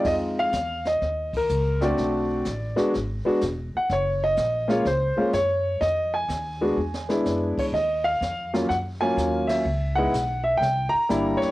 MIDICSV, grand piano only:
0, 0, Header, 1, 2, 480
1, 0, Start_track
1, 0, Tempo, 479616
1, 57, Time_signature, 4, 2, 24, 8
1, 11521, End_track
2, 0, Start_track
2, 0, Title_t, "Grand piano"
2, 0, Program_c, 0, 0
2, 0, Note_on_c, 0, 56, 51
2, 0, Note_on_c, 0, 60, 49
2, 0, Note_on_c, 0, 63, 51
2, 0, Note_on_c, 0, 65, 56
2, 62, Note_on_c, 0, 75, 98
2, 133, Note_off_c, 0, 75, 0
2, 391, Note_on_c, 0, 77, 108
2, 499, Note_off_c, 0, 56, 0
2, 503, Note_off_c, 0, 60, 0
2, 504, Note_off_c, 0, 63, 0
2, 507, Note_off_c, 0, 65, 0
2, 832, Note_off_c, 0, 77, 0
2, 869, Note_on_c, 0, 75, 90
2, 1310, Note_off_c, 0, 75, 0
2, 1368, Note_on_c, 0, 70, 79
2, 1811, Note_on_c, 0, 57, 67
2, 1814, Note_on_c, 0, 60, 64
2, 1818, Note_on_c, 0, 62, 63
2, 1824, Note_on_c, 0, 66, 77
2, 1847, Note_off_c, 0, 70, 0
2, 1849, Note_on_c, 0, 74, 81
2, 2423, Note_off_c, 0, 57, 0
2, 2425, Note_off_c, 0, 60, 0
2, 2427, Note_off_c, 0, 62, 0
2, 2430, Note_off_c, 0, 66, 0
2, 2755, Note_off_c, 0, 74, 0
2, 2764, Note_on_c, 0, 56, 74
2, 2765, Note_on_c, 0, 59, 68
2, 2768, Note_on_c, 0, 62, 64
2, 2771, Note_on_c, 0, 66, 75
2, 2916, Note_off_c, 0, 56, 0
2, 2916, Note_off_c, 0, 59, 0
2, 2918, Note_off_c, 0, 62, 0
2, 2920, Note_off_c, 0, 66, 0
2, 3254, Note_on_c, 0, 56, 70
2, 3255, Note_on_c, 0, 59, 65
2, 3262, Note_on_c, 0, 62, 64
2, 3268, Note_on_c, 0, 66, 80
2, 3402, Note_off_c, 0, 56, 0
2, 3402, Note_off_c, 0, 59, 0
2, 3405, Note_off_c, 0, 62, 0
2, 3408, Note_off_c, 0, 66, 0
2, 3771, Note_on_c, 0, 78, 83
2, 3920, Note_off_c, 0, 78, 0
2, 3928, Note_on_c, 0, 73, 88
2, 4241, Note_on_c, 0, 75, 97
2, 4243, Note_off_c, 0, 73, 0
2, 4678, Note_off_c, 0, 75, 0
2, 4683, Note_on_c, 0, 58, 67
2, 4685, Note_on_c, 0, 56, 69
2, 4688, Note_on_c, 0, 61, 64
2, 4697, Note_on_c, 0, 65, 79
2, 4714, Note_on_c, 0, 73, 77
2, 4836, Note_off_c, 0, 58, 0
2, 4837, Note_off_c, 0, 56, 0
2, 4839, Note_off_c, 0, 61, 0
2, 4843, Note_off_c, 0, 65, 0
2, 4857, Note_off_c, 0, 73, 0
2, 4873, Note_on_c, 0, 72, 87
2, 5172, Note_on_c, 0, 56, 61
2, 5179, Note_on_c, 0, 58, 53
2, 5180, Note_on_c, 0, 61, 55
2, 5184, Note_on_c, 0, 65, 67
2, 5314, Note_off_c, 0, 72, 0
2, 5321, Note_off_c, 0, 56, 0
2, 5324, Note_off_c, 0, 58, 0
2, 5325, Note_off_c, 0, 61, 0
2, 5327, Note_off_c, 0, 65, 0
2, 5343, Note_on_c, 0, 73, 94
2, 5813, Note_on_c, 0, 75, 96
2, 5837, Note_off_c, 0, 73, 0
2, 6143, Note_on_c, 0, 80, 89
2, 6147, Note_off_c, 0, 75, 0
2, 6617, Note_on_c, 0, 56, 68
2, 6619, Note_on_c, 0, 59, 59
2, 6622, Note_on_c, 0, 62, 57
2, 6624, Note_on_c, 0, 66, 68
2, 6764, Note_off_c, 0, 56, 0
2, 6764, Note_off_c, 0, 59, 0
2, 6766, Note_off_c, 0, 62, 0
2, 6767, Note_off_c, 0, 66, 0
2, 7062, Note_off_c, 0, 80, 0
2, 7092, Note_on_c, 0, 59, 60
2, 7095, Note_on_c, 0, 56, 60
2, 7100, Note_on_c, 0, 62, 56
2, 7107, Note_on_c, 0, 64, 65
2, 7597, Note_on_c, 0, 73, 71
2, 7647, Note_off_c, 0, 73, 0
2, 7705, Note_off_c, 0, 59, 0
2, 7707, Note_off_c, 0, 56, 0
2, 7709, Note_off_c, 0, 62, 0
2, 7712, Note_off_c, 0, 64, 0
2, 7743, Note_on_c, 0, 75, 91
2, 8049, Note_on_c, 0, 77, 109
2, 8072, Note_off_c, 0, 75, 0
2, 8501, Note_off_c, 0, 77, 0
2, 8542, Note_on_c, 0, 61, 51
2, 8543, Note_on_c, 0, 54, 62
2, 8545, Note_on_c, 0, 58, 56
2, 8547, Note_on_c, 0, 65, 65
2, 8686, Note_off_c, 0, 54, 0
2, 8686, Note_off_c, 0, 61, 0
2, 8687, Note_off_c, 0, 58, 0
2, 8689, Note_off_c, 0, 65, 0
2, 8696, Note_on_c, 0, 78, 92
2, 8769, Note_off_c, 0, 78, 0
2, 9014, Note_on_c, 0, 80, 91
2, 9022, Note_on_c, 0, 54, 65
2, 9027, Note_on_c, 0, 58, 64
2, 9032, Note_on_c, 0, 61, 61
2, 9038, Note_on_c, 0, 65, 72
2, 9480, Note_on_c, 0, 76, 90
2, 9512, Note_off_c, 0, 80, 0
2, 9630, Note_off_c, 0, 54, 0
2, 9632, Note_off_c, 0, 58, 0
2, 9635, Note_off_c, 0, 61, 0
2, 9638, Note_off_c, 0, 65, 0
2, 9962, Note_on_c, 0, 78, 95
2, 9979, Note_on_c, 0, 56, 68
2, 9985, Note_off_c, 0, 76, 0
2, 9987, Note_on_c, 0, 59, 64
2, 9989, Note_on_c, 0, 63, 60
2, 9993, Note_on_c, 0, 64, 72
2, 10124, Note_off_c, 0, 56, 0
2, 10128, Note_off_c, 0, 59, 0
2, 10129, Note_off_c, 0, 63, 0
2, 10131, Note_off_c, 0, 64, 0
2, 10417, Note_off_c, 0, 78, 0
2, 10444, Note_on_c, 0, 76, 91
2, 10582, Note_on_c, 0, 79, 103
2, 10618, Note_off_c, 0, 76, 0
2, 10901, Note_on_c, 0, 82, 112
2, 10931, Note_off_c, 0, 79, 0
2, 11100, Note_on_c, 0, 55, 65
2, 11100, Note_on_c, 0, 58, 58
2, 11108, Note_on_c, 0, 62, 61
2, 11112, Note_on_c, 0, 64, 75
2, 11380, Note_on_c, 0, 73, 96
2, 11415, Note_off_c, 0, 82, 0
2, 11521, Note_off_c, 0, 55, 0
2, 11521, Note_off_c, 0, 58, 0
2, 11521, Note_off_c, 0, 62, 0
2, 11521, Note_off_c, 0, 64, 0
2, 11521, Note_off_c, 0, 73, 0
2, 11521, End_track
0, 0, End_of_file